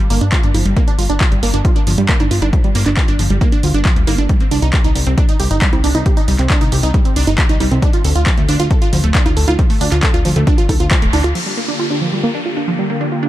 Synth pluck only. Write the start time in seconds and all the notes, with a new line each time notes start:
0.10 A#3
0.21 D4
0.32 F4
0.43 D4
0.54 F3
0.65 G3
0.77 A#3
0.88 D4
0.98 F4
1.10 D4
1.21 F3
1.32 G3
1.43 A#3
1.54 D4
1.65 F4
1.76 D4
1.87 F3
1.98 G3
2.09 A#3
2.20 D4
2.31 F4
2.42 D4
2.53 F3
2.64 G3
2.75 A#3
2.86 D4
2.97 F4
3.08 D4
3.19 F3
3.30 G3
3.41 A#3
3.52 D4
3.63 F4
3.74 D4
3.85 F3
3.96 G3
4.07 A#3
4.18 D4
4.29 G3
4.41 C4
4.51 D4
4.62 D#4
4.73 G4
4.84 D#4
4.96 G3
5.07 C4
5.18 D4
5.29 D#4
5.40 G4
5.51 D#4
5.62 G3
5.73 C4
5.84 D4
5.95 D#4
6.06 G4
6.17 D#4
6.28 G3
6.39 C4
6.50 D4
6.61 D#4
6.72 G4
6.83 D#4
6.94 G3
7.05 C4
7.16 D4
7.27 D#4
7.38 G4
7.49 D#4
7.61 G3
7.71 C4
7.83 D4
7.94 F4
8.05 A4
8.16 F4
8.27 F3
8.38 A3
8.49 D4
8.60 F4
8.70 A4
8.82 F4
8.93 F3
9.04 A3
9.15 D4
9.26 F4
9.37 A4
9.48 F4
9.59 F3
9.70 A3
9.81 D4
9.92 F4
10.03 A4
10.14 F4
10.25 F3
10.36 A3
10.47 D4
10.58 F4
10.69 A4
10.80 F4
10.91 F3
11.02 A3
11.13 D4
11.24 F4
11.35 F3
11.46 G3
11.57 A#3
11.68 D4
11.79 F4
11.90 D4
12.01 F3
12.13 G3
12.23 A#3
12.35 D4
12.46 F4
12.57 D4
12.68 F3
12.79 G3
12.90 A#3
13.01 D4
13.12 F4
13.23 D4